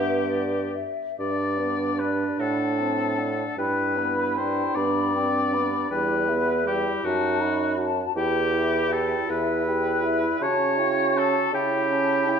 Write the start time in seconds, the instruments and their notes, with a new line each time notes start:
Already playing: bassoon G2, clarinet B3, french horn B3, oboe G4, flute E5
0.29 flute D5
0.75 flute E5
1.19 bassoon G2, french horn D4, clarinet D4, flute D5, oboe D5
1.59 french horn B3, flute B4
1.99 french horn D4, oboe B4, flute D5
2.39 bassoon A2, french horn D4, oboe A4, flute F#5
2.78 french horn C4, flute A5
3.18 french horn D4, flute F#5
3.57 bassoon G2, french horn D4, clarinet E4, oboe B4, flute G5
3.98 french horn B3, flute B5
4.36 french horn D4, oboe C5, flute G5
4.75 bassoon G2, french horn B3, clarinet D4, oboe D5, flute B5
5.15 clarinet C4, french horn D4, flute G5
5.53 french horn B3, clarinet D4, flute B5
5.90 bassoon E2, french horn G3, clarinet E4, oboe B4, flute G5
6.29 french horn B3, flute E5
6.66 french horn G3, oboe G4, flute G5
7.03 bassoon F#2, clarinet D#4, french horn F#4, oboe F#4, flute A5
7.41 french horn D#4, flute B5
7.77 french horn F#4, flute A5
8.15 bassoon E2, clarinet E4, french horn G4, oboe G4, flute G5
8.53 french horn E4, flute E5
8.91 french horn G4, oboe A4, flute G5
9.28 bassoon E2, french horn E4, oboe B4, flute E5
9.66 french horn G4, flute G5
10.03 french horn E4, flute E5
10.40 bassoon C#3, french horn C#4, clarinet F#4, oboe C#5, flute A5
10.78 french horn E4, flute G5
11.16 french horn C#4, oboe A4, flute A5
11.53 bassoon C#3, clarinet E4, french horn E4, oboe G4, flute G5
11.90 french horn C#4, flute A5
12.28 french horn E4, flute G5